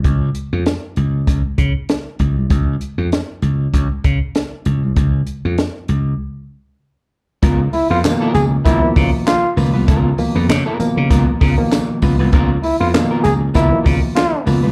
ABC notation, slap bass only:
X:1
M:4/4
L:1/16
Q:"Swing 16ths" 1/4=98
K:Dbmix
V:1 name="Slap bass" clef=bass
D,,2 z F,, z2 D,,2 D,, z D, z3 D,, =C,, | D,,2 z F,, z2 D,,2 D,, z D, z3 D,, =C,, | D,,2 z F,, z2 D,,2 z8 | D,,2 z F,, z2 D,,2 D,, z D, z3 D,, =C,, |
D,,2 z F,, D, z2 D, D,, z D, z3 D,, =C,, | D,,2 z F,, z2 D,,2 D,, z D, z3 D,, =C,, |]